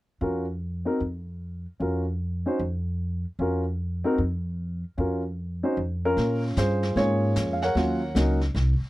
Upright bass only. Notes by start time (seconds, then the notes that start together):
0.21 F2
1.00 F2
1.80 F2
2.59 F2
3.39 F2
4.18 F2
4.98 F2
5.77 F2
6.17 A#2
6.57 G2
6.96 G#2
7.36 F2
7.75 D#2
8.15 C#2
8.55 C2
8.80 muted upright bass stroke